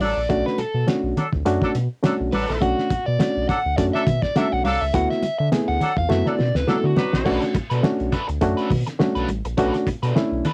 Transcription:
0.00 analog synth bass A1, horn section F#3 D4 A4, overdriven electric guitar D5, open hi-hat, high conga
0.17 analog synth bass A#1
0.29 analog synth bass B1, reed electric piano A3 C#4 D4 F#4, overdriven electric guitar D5, kick, closed hi-hat, muted conga
0.46 overdriven electric guitar B4, snare
0.58 analog synth bass B2, overdriven electric guitar A4, closed hi-hat, muted conga
0.74 analog synth bass B2
0.87 reed electric piano A3 C#4 D4 F#4, snare, closed hi-hat, high conga
1.03 analog synth bass B1
1.17 horn section F#3 D4 A4, closed hi-hat, low conga
1.33 analog synth bass D2, kick
1.45 analog synth bass F#2, reed electric piano A3 C#4 D4 F#4, closed hi-hat, muted conga
1.62 horn section F#3 D4 A4, kick, snare
1.75 analog synth bass B2, closed hi-hat, muted conga
2.03 horn section F#3 D4 A4, reed electric piano A3 C#4 D4 F#4, snare, closed hi-hat, high conga
2.20 analog synth bass B1
2.32 analog synth bass A1, horn section F#3 D4 A4, overdriven electric guitar B4, open hi-hat, high conga
2.48 analog synth bass A#1, overdriven electric guitar A4, snare
2.61 analog synth bass B1, reed electric piano A3 C#4 D4 F#4, overdriven electric guitar F#4, kick, closed hi-hat
2.79 snare
2.90 analog synth bass B2, kick, closed hi-hat, muted conga
3.06 analog synth bass B2, overdriven electric guitar D5
3.19 reed electric piano A3 C#4 D4 F#4, snare, closed hi-hat, high conga
3.37 analog synth bass B1
3.48 horn section F#3 D4 A4, overdriven electric guitar F#5, kick, snare, closed hi-hat
3.66 analog synth bass D2
3.77 analog synth bass F#2, reed electric piano A3 C#4 D4 F#4, overdriven electric guitar D5, kick, closed hi-hat, muted conga
3.93 horn section F#3 D4 A4, overdriven electric guitar E5, snare
4.06 analog synth bass B2, kick, closed hi-hat, muted conga, low conga
4.22 overdriven electric guitar D5, kick, snare
4.35 horn section F#3 D4 A4, reed electric piano A3 C#4 D4 F#4, overdriven electric guitar E5, snare, closed hi-hat, high conga
4.52 analog synth bass B1, overdriven electric guitar F#5
4.64 analog synth bass C2, horn section F#3 D4 A4, overdriven electric guitar F5, open hi-hat, high conga
4.81 analog synth bass C#2, overdriven electric guitar E5
4.93 analog synth bass D2, reed electric piano A3 B3 E4 F#4, overdriven electric guitar F#5, kick, closed hi-hat
5.10 overdriven electric guitar E5, snare
5.22 analog synth bass D3, closed hi-hat, muted conga
5.38 analog synth bass D3, overdriven electric guitar E5
5.51 reed electric piano A3 B3 E4 G#4, snare, closed hi-hat, high conga
5.68 analog synth bass D2, overdriven electric guitar F#5
5.81 horn section F#3 D4 A4, closed hi-hat, low conga
5.97 analog synth bass E2, overdriven electric guitar F5, kick
6.09 analog synth bass F#2, reed electric piano A3 B3 E4 F#4, overdriven electric guitar E5, snare, muted conga
6.26 horn section F#3 D4 A4, overdriven electric guitar D5, snare
6.39 analog synth bass B2, snare, muted conga
6.55 analog synth bass D2, overdriven electric guitar B4, snare
6.67 horn section F#3 D4 A4, reed electric piano A3 B3 E4 F#4, overdriven electric guitar A4, snare, high conga
6.84 analog synth bass D3, overdriven electric guitar F#4
6.96 horn section F#3 D4 B4, snare, high conga
7.13 analog synth bass A#1, snare
7.25 analog synth bass B1, reed electric piano A3 C#4 D4 F#4, overdriven electric guitar D4 A4 B4, kick, crash, muted conga
7.42 muted overdriven electric guitar stroke, snare, closed hi-hat
7.54 analog synth bass B2, muted overdriven electric guitar stroke, kick, closed hi-hat, muted conga
7.70 analog synth bass B2, overdriven electric guitar D4 A4 B4, closed hi-hat
7.83 reed electric piano A3 C#4 D4 F#4, muted overdriven electric guitar stroke, snare, high conga
8.00 analog synth bass B1, closed hi-hat
8.12 overdriven electric guitar D4 A4 B4, kick, snare, closed hi-hat
8.28 analog synth bass D2, muted overdriven electric guitar stroke, closed hi-hat
8.41 analog synth bass F#2, reed electric piano A3 C#4 D4 F#4, muted overdriven electric guitar stroke, kick, closed hi-hat, muted conga
8.57 overdriven electric guitar D4 A4 B4, closed hi-hat
8.70 analog synth bass B2, muted overdriven electric guitar stroke, kick, open hi-hat, muted conga, low conga
8.87 muted overdriven electric guitar stroke, snare, closed hi-hat
8.99 reed electric piano A3 C#4 D4 F#4, muted overdriven electric guitar stroke, snare, high conga
9.15 analog synth bass B1, overdriven electric guitar D4 A4 B4, closed hi-hat
9.29 analog synth bass A1, muted overdriven electric guitar stroke, closed hi-hat, high conga
9.45 analog synth bass A#1, muted overdriven electric guitar stroke, closed hi-hat
9.57 analog synth bass B1, reed electric piano A3 C#4 D4 F#4, overdriven electric guitar D4 A4 B4, kick, closed hi-hat, muted conga
9.74 muted overdriven electric guitar stroke, snare, closed hi-hat
9.87 analog synth bass B2, muted overdriven electric guitar stroke, kick, closed hi-hat, muted conga
10.03 analog synth bass B2, overdriven electric guitar D4 A4 B4, closed hi-hat
10.16 reed electric piano A3 C#4 D4 E4, muted overdriven electric guitar stroke, snare, high conga
10.32 analog synth bass B1
10.45 overdriven electric guitar D4 A4 B4, closed hi-hat, low conga

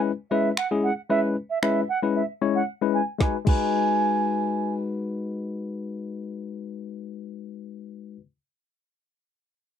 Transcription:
Already playing: tine electric piano G#3 C#4 E4 B4
0.31 tine electric piano G#3 C#4 E4 B4, flute E5
0.57 flute F#5, finger snap
0.71 tine electric piano G#3 C#4 E4 G#4
0.84 flute F#5
1.10 tine electric piano G#3 C#4 E4 B4, flute E5
1.50 flute E5
1.62 tine electric piano G#3 C#4 E4 B4, flute E5, finger snap
1.89 flute F#5
2.03 tine electric piano G#3 C#4 E4 B4
2.15 flute E5
2.41 tine electric piano G#3 C#4 E4 C#5
2.56 flute F#5
2.82 tine electric piano G#3 C#4 E4 B4
2.94 flute G#5
3.19 tine electric piano G#3 D#4 F#4 B4, flute G#5, kick, snare
3.45 tine electric piano G#3 D#4 F#4, flute G#5, kick, crash
3.49 tine electric piano B4

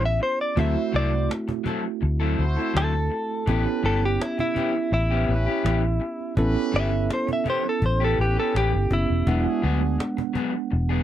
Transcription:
Already playing: fingered electric bass A1, tine electric piano B3 C#4 E4 G4
0.03 clean electric guitar E5, muted clean electric guitar stroke
0.20 clean electric guitar C5, muted clean electric guitar stroke, cajon slap
0.41 clean electric guitar D5
0.56 fingered electric bass D2, clean electric guitar F#3 C4 E4 A4 E5, tine electric piano A3 C4 E4 F#4, horn section E4 F#4 C5, cajon bass
0.75 muted clean electric guitar stroke
0.92 fingered electric bass C2, clean electric guitar F#3 C4 E4 A4 D5, cajon slap
1.12 muted clean electric guitar stroke
1.29 muted clean electric guitar stroke, cajon slap
1.48 muted clean electric guitar stroke, cajon bass
1.64 clean electric guitar F#3 C4 E4 A4, cajon bass
1.84 muted clean electric guitar stroke
2.01 fingered electric bass D2, muted clean electric guitar stroke, cajon slap
2.20 clean electric guitar F#3 C4 E4 A4
2.38 fingered electric bass D2, horn section E4 F#4 C5, cajon slap
2.56 clean electric guitar C4 E4 A4
2.74 fingered electric bass D2, clean electric guitar F#3 C4 E4 A4, cajon slap
2.93 muted clean electric guitar stroke
3.10 muted clean electric guitar stroke, cajon slap
3.31 cajon slap
3.46 fingered electric bass A1, clean electric guitar E3 B3 C#4 G4, tine electric piano B3 C#4 E4 G4, horn section C#4 G4 B4, cajon bass
3.66 muted clean electric guitar stroke
3.83 fingered electric bass G1, clean electric guitar E3 B3 C#4 G4 A4
4.02 clean electric guitar G4, muted clean electric guitar stroke
4.19 clean electric guitar E4, muted clean electric guitar stroke, cajon slap
4.38 clean electric guitar E4, muted clean electric guitar stroke, cajon bass
4.55 clean electric guitar E3 B3 C#4 G4, cajon bass
4.75 muted clean electric guitar stroke
4.92 fingered electric bass A1, clean electric guitar E4, muted clean electric guitar stroke, cajon slap
5.11 clean electric guitar E3 B3 C#4 G4
5.28 fingered electric bass A1, horn section C#4 G4 B4, cajon slap
5.46 clean electric guitar B3 C#4 G4
5.64 fingered electric bass A1, clean electric guitar E3 B3 C#4 G4, cajon slap
5.84 muted clean electric guitar stroke
6.00 muted clean electric guitar stroke, cajon slap
6.21 cajon slap
6.37 fingered electric bass A1, tine electric piano B3 C#4 E4 A4, horn section C#4 G4 B4, cajon bass
6.55 muted clean electric guitar stroke
6.72 fingered electric bass G1, clean electric guitar E3 B3 C#4 G4
6.76 clean electric guitar E5
6.91 muted clean electric guitar stroke
7.09 muted clean electric guitar stroke, cajon slap
7.13 clean electric guitar C5
7.27 muted clean electric guitar stroke, cajon bass
7.33 clean electric guitar E5
7.44 clean electric guitar E3 B3 C#4 G4, cajon bass
7.50 clean electric guitar C5
7.64 muted clean electric guitar stroke
7.69 clean electric guitar A4
7.82 fingered electric bass A1, clean electric guitar C5, muted clean electric guitar stroke, cajon bass, cajon slap
8.00 clean electric guitar E3 B3 C#4 G4
8.04 clean electric guitar A4
8.18 fingered electric bass A1, horn section C#4 G4 B4, clean electric guitar G4, cajon slap
8.37 clean electric guitar B3 C#4 G4 A4
8.54 fingered electric bass A1, clean electric guitar E3 B3 C#4 G4, cajon slap
8.74 fingered electric bass G1, muted clean electric guitar stroke
8.90 fingered electric bass F#1, tine electric piano B3 C#4 E4 G4, clean electric guitar E4, muted clean electric guitar stroke, cajon bass
9.10 fingered electric bass E1
9.27 fingered electric bass E1, clean electric guitar F#3 B3 D4 G#4, tine electric piano G#3 B3 D4 F#5, horn section D4 F#4 G#4, cajon bass
9.45 muted clean electric guitar stroke
9.62 fingered electric bass D2, clean electric guitar F#3 B3 D4 G#4, cajon slap
9.81 muted clean electric guitar stroke
9.99 muted clean electric guitar stroke, cajon slap
10.17 muted clean electric guitar stroke, cajon bass
10.33 clean electric guitar F#3 B3 D4 G#4, cajon bass, cajon slap
10.53 muted clean electric guitar stroke
10.71 fingered electric bass E1, muted clean electric guitar stroke, cajon slap
10.89 clean electric guitar F#3 B3 D4 G#4

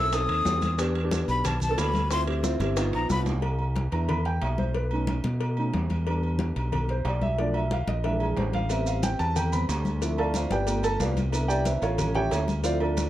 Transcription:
Already playing: fingered electric bass B1, grand piano C4 E4 A4, flute E6
0.12 grand piano C4 D#4 A4, flute D#6, high bongo, high conga, high timbale, maracas
0.29 fingered electric bass D#2, high conga, high timbale
0.45 fingered electric bass E2, high bongo, low bongo, high conga, low timbale, maracas
0.62 high bongo, high conga, high timbale, maracas
0.78 grand piano B3 D4 G4, high bongo, high conga, high timbale, maracas
0.95 high bongo, high conga, high timbale
1.03 grand piano B3 D4 G4
1.11 high bongo, high conga, high timbale, low timbale, maracas
1.28 fingered electric bass B1, flute B5, high bongo, maracas
1.44 flute A5, high bongo, high conga, low conga, high timbale, maracas
1.60 flute A5, high conga, low conga, maracas
1.69 grand piano B3 D4 A4
1.77 fingered electric bass D2, flute B5, high bongo, low bongo, high conga, high timbale, low timbale, maracas
1.94 high bongo, high conga, high timbale, maracas
2.10 grand piano C4 E4 F4, flute C6, high bongo, high conga, high timbale, maracas
2.26 grand piano C4 E4 G4, high bongo, high conga, high timbale
2.43 grand piano C4 E4 F4, high bongo, high conga, low timbale, maracas
2.60 fingered electric bass G1, grand piano C4 E4 G4, high bongo, high conga, high timbale, maracas
2.76 grand piano B3 D#4 F4, high bongo, high conga, high timbale, maracas
2.93 fingered electric bass A#1, flute A#5, high conga, high timbale
3.10 fingered electric bass C2, flute B5, high bongo, low bongo, high conga, maracas
3.26 high bongo, high conga, low timbale, maracas
3.42 cowbell, high conga, low agogo
3.59 high conga, low agogo
3.75 cowbell, high conga, low timbale
3.92 fingered electric bass E2, grand piano B3 D4 E4 A#5, cowbell, low agogo
4.08 grand piano B5, cowbell, high conga, low conga, low agogo
4.25 grand piano G5, cowbell, high conga
4.42 fingered electric bass B1, grand piano E5, cowbell, high conga, low timbale, low agogo
4.58 grand piano C5, high conga, low agogo
4.75 grand piano B4, cowbell, high conga
4.91 grand piano A3 C#4 D#4, high conga, low agogo
5.07 cowbell, high conga, low timbale, low agogo
5.24 fingered electric bass B2, cowbell, high conga
5.40 cowbell, high conga, low agogo
5.57 grand piano A3 C#4 D#4, high conga, low agogo
5.73 fingered electric bass E2, cowbell, high conga, low timbale
5.90 cowbell, high conga, low agogo
6.06 grand piano G3 B3 D4, cowbell, high conga, low agogo
6.23 high conga, low agogo
6.39 cowbell, high conga, low timbale
6.56 fingered electric bass B1, cowbell, low agogo
6.72 cowbell, high conga, low conga, low agogo
6.89 grand piano C5, cowbell, high conga
7.05 fingered electric bass B1, grand piano D5, cowbell, high conga, low timbale, low agogo
7.21 grand piano E5, high conga, low agogo
7.38 grand piano F3 A3 D4 D5, cowbell, high conga
7.54 grand piano E5, high conga, low agogo
7.68 grand piano E5, cowbell, high conga, low timbale, low agogo
7.72 grand piano F5
7.87 fingered electric bass A#1, grand piano D#5, cowbell, high conga
8.04 grand piano E3 G#3 D4 E5, cowbell, high conga, low agogo
8.20 grand piano G#4, high conga, low agogo
8.37 fingered electric bass A1, grand piano C5, cowbell, high conga, low timbale
8.53 grand piano F5, cowbell, high conga, low agogo
8.69 grand piano G3 B3 C4 E5, cowbell, high conga, low agogo, maracas
8.86 grand piano F5, high conga, low agogo, maracas
9.03 grand piano G5, cowbell, high conga, low timbale, maracas
9.19 fingered electric bass E2, grand piano A5, cowbell, low agogo, maracas
9.36 grand piano G5, cowbell, high conga, low conga, low agogo, maracas
9.52 grand piano G3 B3 C4 B5, cowbell, high conga, low conga, maracas
9.69 fingered electric bass D2, cowbell, high conga, low timbale, low agogo, maracas
9.85 high conga, low agogo, maracas
10.02 grand piano F3 C4 E4, cowbell, high conga, maracas
10.18 grand piano A4 D5 F5 A5, high conga, low agogo
10.34 grand piano F4 C5 D5 F5, cowbell, high conga, low timbale, low agogo, maracas
10.50 fingered electric bass G1, grand piano G4 B4 D5 G5, cowbell, high conga, maracas
10.67 grand piano A3 B3 F4, cowbell, high conga, low agogo, maracas
10.83 grand piano A4 A5, high conga, low agogo, maracas
11.00 fingered electric bass C2, grand piano F4 B4 D5 F5, cowbell, high conga, low timbale, maracas
11.17 cowbell, high conga, low agogo, maracas
11.32 grand piano B3 D4 E4, cowbell, high conga, low agogo, maracas
11.48 grand piano G4 D5 E5 G5, high conga, low agogo, maracas
11.65 grand piano E4 B4 C5 E5, cowbell, high conga, low timbale, maracas
11.82 fingered electric bass A1, grand piano F4 A4 C#5 F5, cowbell, low agogo, maracas
11.97 grand piano G3 C#4 F4, cowbell, high conga, low conga, low agogo, maracas
12.15 grand piano G4 C#5 E5 G5, cowbell, high conga, low conga
12.31 fingered electric bass D2, grand piano E4 A4 C#5 E5, cowbell, high conga, low timbale, low agogo, maracas
12.48 high conga, low agogo, maracas
12.64 grand piano F3 C4 E4 F4 C5 D5 F5, cowbell, high conga, maracas
12.80 grand piano D4 F4 A4 D5, high conga, low agogo
12.97 cowbell, high conga, low timbale, low agogo, maracas

